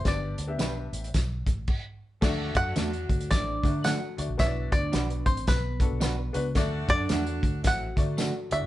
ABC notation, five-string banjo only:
X:1
M:4/4
L:1/8
Q:"Swing" 1/4=111
K:Dmix
V:1 name="Five-string banjo"
d6 z2 | z f3 d2 f2 | e d2 c B3 z | z d2 z f3 e |]